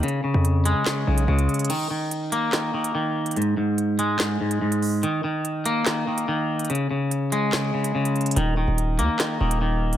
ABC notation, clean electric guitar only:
X:1
M:4/4
L:1/8
Q:1/4=144
K:Dbmix
V:1 name="Clean electric guitar" clef=bass
D, D,2 A, D, D, D,2 | E, E,2 B, E, E, E,2 | A,, A,,2 A, A,, A,, A,,2 | E, E,2 B, E, E, E,2 |
D, D,2 A, D, D, D,2 | E, E,2 B, E, E, E,2 |]